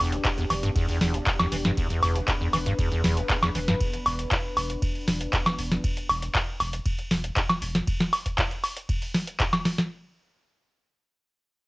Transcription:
Already playing: analog synth pad B3 D4 G4
0.00 analog synth bass E1, acid bass E2
0.12 acid bass D2, closed hi-hat
0.25 kick, clap, ride
0.38 acid bass E2, closed hi-hat
0.50 analog synth bass E1, acid bass E3, open hi-hat, high woodblock
0.63 acid bass G2, closed hi-hat
0.75 acid bass E2, kick, ride
0.88 acid bass E2, open hi-hat
1.01 analog synth bass E1, acid bass E2, snare, open hi-hat
1.14 acid bass D2, closed hi-hat
1.26 kick, clap, ride
1.39 acid bass E2, snare, closed hi-hat, high woodblock
1.52 analog synth bass E1, acid bass E3, open hi-hat
1.65 acid bass G2, snare, closed hi-hat
1.77 acid bass E2, analog synth pad B4, kick, ride
1.90 acid bass E2, closed hi-hat
2.03 analog synth bass E1, acid bass E2, open hi-hat, high woodblock
2.16 acid bass D2, closed hi-hat
2.28 acid bass E2, kick, clap, ride
2.41 acid bass E2
2.53 analog synth bass E1, acid bass E3, open hi-hat, high woodblock
2.66 acid bass G2, closed hi-hat
2.79 acid bass E2, kick, ride
2.92 acid bass E2, closed hi-hat
3.04 analog synth bass E1, acid bass E2, snare, open hi-hat
3.17 acid bass D2, closed hi-hat
3.30 acid bass E2, kick, clap, ride
3.43 acid bass E2, snare, closed hi-hat, high woodblock
3.55 analog synth bass E1, acid bass E3, open hi-hat
3.68 acid bass G2, snare, closed hi-hat
3.81 kick, ride
3.94 closed hi-hat
4.06 analog synth bass E1, open hi-hat, high woodblock
4.19 closed hi-hat
4.31 kick, clap, ride
4.57 analog synth bass E1, open hi-hat, high woodblock
4.70 closed hi-hat
4.82 kick, ride
4.95 open hi-hat
5.08 analog synth bass E1, snare, open hi-hat
5.21 closed hi-hat
5.33 kick, clap, ride
5.46 snare, closed hi-hat, high woodblock
5.59 analog synth bass E1, open hi-hat
5.72 snare, closed hi-hat
5.84 kick, ride
5.97 closed hi-hat
6.09 analog synth bass E1, open hi-hat, high woodblock
6.22 closed hi-hat
6.35 kick, clap, ride
6.60 analog synth bass E1, open hi-hat, high woodblock
6.73 closed hi-hat
6.86 kick, ride
6.99 closed hi-hat
7.11 analog synth bass E1, snare, open hi-hat
7.24 closed hi-hat
7.36 kick, clap, ride
7.49 snare, closed hi-hat, high woodblock
7.62 analog synth bass E1, open hi-hat
7.75 snare, closed hi-hat
7.87 kick, ride
8.00 snare, closed hi-hat
8.13 open hi-hat, high woodblock
8.26 kick, closed hi-hat
8.38 kick, clap, ride
8.51 closed hi-hat
8.64 open hi-hat, high woodblock
8.77 closed hi-hat
8.89 kick, ride
9.02 open hi-hat
9.14 snare, open hi-hat
9.27 closed hi-hat
9.40 kick, clap, ride
9.53 snare, closed hi-hat, high woodblock
9.65 snare, open hi-hat
9.78 snare, closed hi-hat

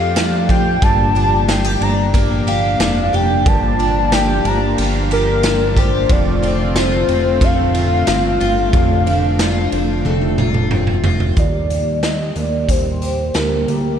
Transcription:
Already playing: analog synth bass F2, twelve-string acoustic guitar F2 A3 D4 F4, analog synth pad F3 A3 G4, soft synth lead F5
0.16 twelve-string acoustic guitar D4, snare, ride, tambourine
0.49 twelve-string acoustic guitar F4, soft synth lead G5, kick, ride
0.82 analog synth bass G1, twelve-string acoustic guitar G2, analog synth pad F3 A#3 D4, soft synth lead A5, kick, ride
1.15 twelve-string acoustic guitar D4, ride
1.48 twelve-string acoustic guitar F4, soft synth lead G5, snare, ride, tambourine
1.65 twelve-string acoustic guitar G4
1.81 analog synth bass G1, twelve-string acoustic guitar D4, soft synth lead A#5, ride
2.14 analog synth bass G1, twelve-string acoustic guitar A#3, kick, ride
2.47 twelve-string acoustic guitar G4, soft synth lead F5, ride
2.80 analog synth bass F1, twelve-string acoustic guitar D4, snare, ride, tambourine
3.13 analog synth bass F1, twelve-string acoustic guitar G4, soft synth lead G5, ride
3.46 analog synth bass G1, twelve-string acoustic guitar G2, analog synth pad F4, soft synth lead A5, kick, ride
3.79 twelve-string acoustic guitar D4, ride
4.12 twelve-string acoustic guitar G4, soft synth lead G5, snare, ride, tambourine
4.45 analog synth bass G1, twelve-string acoustic guitar D4, soft synth lead A#5, ride
4.78 analog synth bass G1, twelve-string acoustic guitar A#3, ride
5.11 twelve-string acoustic guitar G4, soft synth lead A#4, ride
5.43 twelve-string acoustic guitar D4, snare, ride, tambourine
5.77 twelve-string acoustic guitar G4, soft synth lead C5, kick, ride
6.09 analog synth bass F1, twelve-string acoustic guitar F2, analog synth pad D3 A3 C4, soft synth lead D5, kick, ride
6.43 twelve-string acoustic guitar C4, ride
6.76 twelve-string acoustic guitar F4, soft synth lead C5, snare, ride, tambourine
7.08 analog synth bass F1, twelve-string acoustic guitar C4, ride
7.41 analog synth bass F1, twelve-string acoustic guitar A3, soft synth lead F5, kick, ride
7.75 twelve-string acoustic guitar F4, ride
8.07 analog synth bass G1, twelve-string acoustic guitar C4, snare, ride, tambourine
8.41 analog synth bass G1, twelve-string acoustic guitar F4, ride
8.73 analog synth bass F1, twelve-string acoustic guitar F2, analog synth pad D4, kick, ride
9.06 twelve-string acoustic guitar C4, ride
9.39 twelve-string acoustic guitar F4, snare, ride, tambourine
9.72 analog synth bass F1, twelve-string acoustic guitar C4, ride
10.05 analog synth bass F1, twelve-string acoustic guitar A3, high tom
10.22 high tom
10.38 twelve-string acoustic guitar F4, mid tom
10.54 mid tom
10.71 twelve-string acoustic guitar C4, mid tom
10.87 mid tom
11.04 twelve-string acoustic guitar F4, floor tom
11.20 floor tom
11.37 analog synth bass D#2, analog synth pad G3 A#3 G4, soft synth lead D5, kick, closed hi-hat
11.70 twelve-string acoustic guitar A#3, closed hi-hat
12.03 soft synth lead D#5, snare, closed hi-hat
12.36 analog synth bass D#2, twelve-string acoustic guitar A#3, soft synth lead D5, closed hi-hat
12.69 analog synth bass D#2, twelve-string acoustic guitar C4, soft synth lead C5, kick, closed hi-hat
13.02 twelve-string acoustic guitar G4, closed hi-hat
13.34 analog synth bass D2, twelve-string acoustic guitar A#3, soft synth lead A#4, snare, closed hi-hat
13.68 analog synth bass D2, twelve-string acoustic guitar G4, closed hi-hat

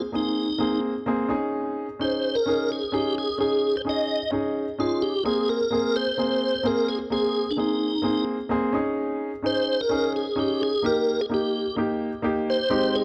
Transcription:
0.12 grand piano A#3 C4 G#4, tonewheel organ D#4
0.58 grand piano A#3 C4 G#4
1.06 grand piano A#3 C4 G#4
1.28 grand piano C#4 D#4 G#4
1.99 grand piano C#4 D#4 G#4, tonewheel organ C5
2.35 tonewheel organ A#4
2.46 grand piano C#4 D#4 G#4
2.72 tonewheel organ G#4
2.92 grand piano C#4 D#4 G#4, tonewheel organ G4
3.18 tonewheel organ G#4
3.38 grand piano C#4 D#4 G#4, tonewheel organ G#4
3.77 tonewheel organ C5
3.85 grand piano C#4 D#4 G#4
3.89 tonewheel organ D#5
4.31 grand piano C#4 D#4 G#4
4.78 grand piano C#4 D#4 G#4, tonewheel organ F4
5.02 tonewheel organ G4
5.25 grand piano A#3 C4 G#4, tonewheel organ G#4
5.49 tonewheel organ A#4
5.71 grand piano A#3 C4 G#4
5.96 tonewheel organ C5
6.18 grand piano A#3 C4 G#4
6.63 grand piano A#3 C4 G#4, tonewheel organ A#4
6.89 tonewheel organ G#4
7.10 grand piano A#3 C4 G#4, tonewheel organ G#4
7.51 tonewheel organ D4
7.57 grand piano A#3 C4 G#4, tonewheel organ D#4
8.02 grand piano A#3 C4 G#4
8.49 grand piano A#3 C4 G#4
8.73 grand piano C#4 D#4 G#4
9.42 grand piano C#4 D#4 G#4, tonewheel organ C5
9.81 tonewheel organ A#4
9.89 grand piano C#4 D#4 G#4
10.16 tonewheel organ G#4
10.36 grand piano C#4 D#4 G#4, tonewheel organ G4
10.63 tonewheel organ G#4
10.82 grand piano A#3 D#4 G4, tonewheel organ A#4
11.21 tonewheel organ G#4
11.29 grand piano A#3 D#4 G4
11.34 tonewheel organ G4
11.76 grand piano A#3 D#4 G4
12.22 grand piano A#3 D#4 G4
12.50 tonewheel organ C5
12.70 grand piano G#3 C4 D#4 G4
12.95 tonewheel organ G#4

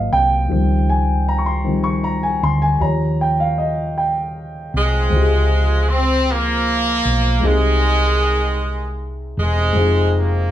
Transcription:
Already playing: grand piano F#3 A#3 C4 D#5 F5
0.12 fingered electric bass C2, grand piano G5
0.48 fingered electric bass C#2, grand piano D#3 F3 G3 C4
0.90 grand piano G#5
1.29 grand piano A#5
1.38 grand piano C#6
1.46 grand piano C6
1.64 grand piano D#3 F3 G3 C4
1.84 grand piano C#6
2.04 grand piano A#5
2.23 grand piano G#5
2.43 fingered electric bass D2, grand piano C6
2.62 grand piano G#5
2.81 fingered electric bass D#2, grand piano F3 G4 C#5 A#5
3.21 grand piano G5
3.40 grand piano F5
3.58 grand piano D#5
3.98 grand piano G5
4.74 fingered electric bass C2, horn section C3 F3 G#3
5.09 fingered electric bass C#2, grand piano C3 G#3 C4
5.14 grand piano F4 G4
5.22 grand piano G#4
5.89 horn section C4
6.30 horn section F3 A#3
7.05 fingered electric bass B1
7.40 grand piano C3 G#3 C4 D#4
7.44 fingered electric bass C2, horn section D#3 G#3, grand piano G4 G#4
9.37 fingered electric bass E1, horn section C3 D#3 G#3
9.72 fingered electric bass F1, grand piano G#3 C4 D#4
9.77 grand piano F4 G#4
10.17 horn section A#3

